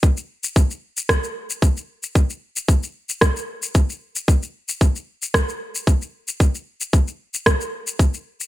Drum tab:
SH |xx-xxx-xxx-xxx-x|xx-xxx-xxx-xxx-x|xx-xxx-xxx-xxx-x|xx-xxx-xxx-xxx-x|
SD |--------r-------|--------r-------|--------r-------|--------r-------|
BD |o---o---o---o---|o---o---o---o---|o---o---o---o---|o---o---o---o---|